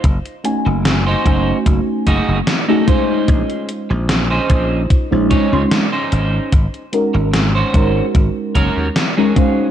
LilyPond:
<<
  \new Staff \with { instrumentName = "Clean electric guitar" } { \time 4/4 \key bes \minor \tempo 4 = 74 r4 r16 <ees' ges' c''>8. r8 <ees' ges' aes'>8 r16 <ees' ges' a'>16 <des' ees' aes' c''>8~ | <des' ees' aes' c''>8 r8. <des' ees' aes' c''>8. r8 <des' ees' aes' des''>8 r16 <des' ees' aes' c''>8. | r4 r16 <des' ges' c''>8. r8 <des' ges' bes'>8 r16 <des' ges' aes'>8. | }
  \new Staff \with { instrumentName = "FM electric piano" } { \time 4/4 \key bes \minor r8 <a des' ees' ges' aes''>4 <a des' ees' ges' aes''>4.~ <a des' ees' ges' aes''>16 <a des' ees' ges' aes'>16 <aes des' ees' f' c''>8~ | <aes des' ees' f' c''>2~ <aes des' ees' f' c''>16 <aes des' ees' f' c''>8 <aes des' ees' f' c'''>8 r8. | r8 <aes des' ees' ges' bes'>4 <aes des' ees' ges' bes'>4.~ <aes des' ees' ges' bes'>16 <aes des' ees' ges' bes'>16 <aes des' ees' c'' f''>8 | }
  \new Staff \with { instrumentName = "Slap bass" } { \clef bass \time 4/4 \key bes \minor ges,,16 r8 ges,,8 r16 ges,,16 r16 ges,,16 r16 ges,,16 ges,,16 r4 | bes,,16 r8 bes,,8 r16 bes,,8 r16 bes,,16 r16 des,16 r8 aes,,16 r16 | aes,,16 r8 aes,,8 r16 aes,,16 r16 aes,,16 r16 ges,,16 ees,16 r4 | }
  \new DrumStaff \with { instrumentName = "Drums" } \drummode { \time 4/4 <hh bd>16 hh16 hh8 <hh sn>8 <hh bd>8 <hh bd>8 <hh bd>8 <hh sn>8 <hh bd>8 | <hh bd>16 hh16 hh8 <hh sn>8 <hh bd>8 <hh bd>8 <hh bd>8 <hh sn>8 hh8 | <hh bd>16 hh16 hh8 <hh sn>8 <hh bd>8 <hh bd>8 <hh bd>8 <hh sn>8 <hh bd>8 | }
>>